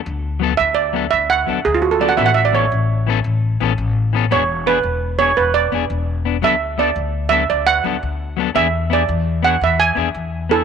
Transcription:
X:1
M:12/8
L:1/16
Q:3/8=113
K:Dlyd
V:1 name="Steel pan"
z6 e2 d4 e2 f2 z2 G =F ^F A d f | e f e d c12 z8 | c4 B6 c2 B2 d2 z8 | e4 d6 e2 d2 f2 z8 |
e4 d6 f2 e2 g2 z6 [EA]2 |]
V:2 name="Clean electric guitar"
z4 [F,B,A]2 z4 [F,B,DA]2 z4 [F,B,DA]2 z4 [F,B,DA]2 | [E,B,CA]2 z2 [E,B,CA]2 z4 [E,B,CA]2 z4 [E,B,CA]2 z4 [E,B,CA]2 | [B,DG]2 z2 [B,DG]2 z4 [B,DG]2 z4 [B,DG]2 z4 [B,D]2 | [F,B,DA]2 z2 [B,DA]2 z4 [F,B,DA]2 z4 [F,B,DA]2 z4 [F,B,DA]2 |
[B,DG]2 z2 [B,DG]2 z4 [B,DG]2 z4 [B,DG]2 z4 [B,DG]2 |]
V:3 name="Upright bass" clef=bass
D,,6 D,,6 D,,4 D,,2 D,,6 | A,,,6 A,,,6 A,,,4 A,,,2 A,,,6 | E,,,6 E,,,6 E,,,4 E,,,2 E,,,6 | D,,6 D,,6 D,,4 D,,2 D,,6 |
E,,6 E,,6 E,,4 E,,2 E,,6 |]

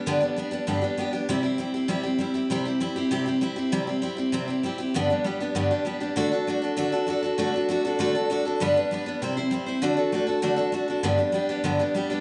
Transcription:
X:1
M:4/4
L:1/8
Q:1/4=197
K:G
V:1 name="Steel-string acoustic guitar"
[G,,D,G,B,DG] [G,B,D] [G,B,DG] [G,B,DG] [G,,D,G,B,DG] [G,B,DG] [G,B,DG] [G,B,DG] | [C,G,CEG] [CEG] [G,CEG] [CEG] [C,G,CEG] [CEG] [G,CEG] [CEG] | [C,G,CEG] [CEG] [G,CEG] [CEG] [C,G,CEG] [CEG] [G,CEG] [CEG] | [C,G,CEG] [CEG] [G,CEG] [CEG] [C,G,CEG] [CEG] [G,CEG] [CEG] |
[G,,D,G,B,DG] [G,B,DG] [G,B,DG] [G,B,DG] [G,,D,G,B,DG] [G,B,DG] [G,B,DG] [G,B,DG] | [D,A,DFA] [DFA] [A,DFA] [DFA] [D,A,DFA] [DFA] [A,DFA] [DFA] | [D,A,DFA] [DFA] [A,DFA] [DFA] [D,A,DFA] [DFA] [A,DFA] [DFA] | [G,,D,G,B,DB] [G,B,DB] [G,B,DB] [G,B,DB] [C,G,CEc] [CEc] [G,CEc] [CEc] |
[D,A,DFA] [DFA] [A,DFA] [DFA] [D,A,DFA] [DFA] [A,DFA] [DFA] | [G,,D,G,B,DG] [G,B,DG] [G,B,DG] [G,B,DG] [G,,D,G,B,DG] [G,B,DG] [G,B,DG] [G,B,DG] |]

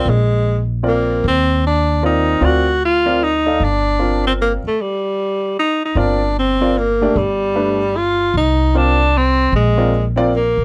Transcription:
X:1
M:3/4
L:1/8
Q:"Swing" 1/4=152
K:Gm
V:1 name="Grand piano"
z4 [CFBd]2 | z4 [CFBd]2 | [C^E^Ad] z2 [CEAd] z [_E=Ad^e] | z2 [CFBd]3 z |
z6 | [CFBd] z2 [CFBd] z [A,DGd] | z2 [A,DG=B] z3 | z2 [CFBd] z3 |
z [CFBd] z [CFBd] z2 |]
V:2 name="Tenor saxophone"
_A,3 z B,2 | C2 D2 E2 | ^F2 ^E2 _E2 | D3 C B, A, |
G,4 E E | D2 C2 B,2 | G,4 F2 | E2 D2 C2 |
_A,3 z B,2 |]
V:3 name="Upright bass" clef=bass
B,,,6 | E,,6 | D,,6 | G,,,4- G,,, z |
z6 | G,,,6 | G,,,6 | C,,6 |
B,,,4- B,,, B,, |]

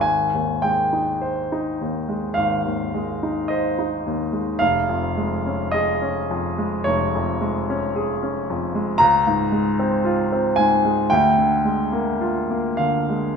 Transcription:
X:1
M:4/4
L:1/16
Q:1/4=54
K:Ab
V:1 name="Grand piano"
a2 g6 f4 e4 | f4 e4 d6 z2 | b6 a2 g6 f2 |]
V:2 name="Grand piano" clef=bass
A,,, E,, A, E c E E,, A, A,,, E,, A, E c E E,, A, | F,,, F,, A, D A D F,, A, F,,, F,, A, D A D F,, A, | D,, A,, A, C F C A,, A, =D,, =D, A, B, F B, D, A, |]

